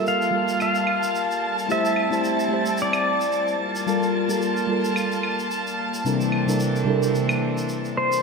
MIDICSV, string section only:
0, 0, Header, 1, 2, 480
1, 0, Start_track
1, 0, Tempo, 545455
1, 1488, Time_signature, 4, 2, 24, 8
1, 7237, End_track
2, 0, Start_track
2, 0, Title_t, "String section"
2, 0, Program_c, 0, 48
2, 0, Note_on_c, 0, 55, 68
2, 0, Note_on_c, 0, 58, 58
2, 0, Note_on_c, 0, 65, 64
2, 0, Note_on_c, 0, 81, 73
2, 1469, Note_off_c, 0, 58, 0
2, 1471, Note_off_c, 0, 65, 0
2, 1477, Note_on_c, 0, 60, 63
2, 1478, Note_on_c, 0, 64, 59
2, 3132, Note_off_c, 0, 81, 0
2, 3146, Note_off_c, 0, 60, 0
2, 3146, Note_off_c, 0, 64, 0
2, 3156, Note_on_c, 0, 65, 65
2, 3158, Note_on_c, 0, 58, 66
2, 3158, Note_on_c, 0, 81, 80
2, 5294, Note_off_c, 0, 55, 0
2, 5300, Note_off_c, 0, 65, 0
2, 5302, Note_off_c, 0, 58, 0
2, 5323, Note_on_c, 0, 52, 69
2, 5324, Note_on_c, 0, 62, 65
2, 5325, Note_on_c, 0, 58, 64
2, 5325, Note_on_c, 0, 60, 62
2, 7208, Note_off_c, 0, 81, 0
2, 7226, Note_off_c, 0, 52, 0
2, 7227, Note_off_c, 0, 60, 0
2, 7227, Note_off_c, 0, 62, 0
2, 7228, Note_off_c, 0, 58, 0
2, 7237, End_track
0, 0, End_of_file